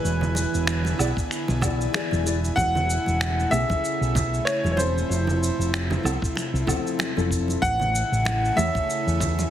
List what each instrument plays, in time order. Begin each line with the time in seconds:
Already playing: nylon-string guitar E3 E4 G#4 D5, grand piano B4, analog synth pad G#5
0.04 fingered electric bass E1, analog synth pad D3 B3 E4, cabasa
0.21 low conga, cabasa
0.35 muted conga, cabasa
0.54 fingered electric bass E1, cabasa
0.67 finger snap, cabasa
0.85 muted conga, cabasa
0.98 fingered electric bass B1, nylon-string guitar E3 E4 G#4 D5, cabasa, low woodblock
1.17 kick, cabasa
1.31 finger snap, cabasa
1.48 fingered electric bass B1, muted conga, cabasa
1.61 nylon-string guitar E3 E4 G#4 D5, kick, low conga, cabasa, low woodblock
1.81 cabasa
1.93 nylon-string guitar E3 E4 G#4 D5, finger snap, muted conga, cabasa
2.11 fingered electric bass E1, high conga, cabasa
2.25 nylon-string guitar E3 E4 G#4 D5, cabasa
2.45 cabasa
2.56 fingered electric bass E1, analog synth pad C#3 A3, grand piano F#5, kick, muted conga, cabasa
2.75 low conga, cabasa
2.90 cabasa
3.06 fingered electric bass E1, muted conga, cabasa
3.21 finger snap, cabasa
3.40 cabasa
3.50 fingered electric bass B1, nylon-string guitar A3 C#4 G#4, grand piano E5, cabasa, low woodblock
3.70 kick, muted conga, cabasa
3.85 cabasa
4.01 fingered electric bass B1, cabasa
4.15 kick, muted conga, low conga, cabasa
4.34 cabasa
4.45 grand piano C#5, finger snap, cabasa
4.64 fingered electric bass E1, high conga, cabasa
4.72 grand piano C#5
4.76 nylon-string guitar F3 C4 E4 A4, grand piano C5, muted conga, cabasa
4.98 cabasa
5.10 fingered electric bass F1, analog synth pad C3 F3, cabasa
5.27 muted conga, low conga, cabasa
5.43 cabasa
5.59 fingered electric bass F1, cabasa
5.74 finger snap, cabasa
5.90 muted conga, low conga, cabasa
6.03 fingered electric bass C2, nylon-string guitar F3 C4 E4 A4, cabasa, low woodblock
6.22 kick, cabasa
6.36 finger snap, muted conga, cabasa
6.53 fingered electric bass C2, cabasa
6.66 nylon-string guitar F3 C4 E4 A4, kick, low conga, cabasa, low woodblock
6.87 cabasa
6.99 finger snap, muted conga, cabasa
7.15 fingered electric bass F1, nylon-string guitar F3 C4 E4 A4, high conga, cabasa
7.31 kick, cabasa
7.48 muted conga, cabasa
7.61 fingered electric bass A1, analog synth pad C#3 A3 E4 G#5, grand piano F#5, kick, muted conga, cabasa
7.80 low conga, cabasa
7.95 cabasa
8.12 fingered electric bass A1, cabasa
8.25 finger snap, muted conga, cabasa
8.45 cabasa
8.55 fingered electric bass E2, nylon-string guitar A3 E4 G#4 C#5, grand piano E5, cabasa, low woodblock
8.75 kick, muted conga, cabasa
8.90 cabasa
9.07 fingered electric bass E2, cabasa
9.20 kick, low conga, cabasa
9.39 muted conga, cabasa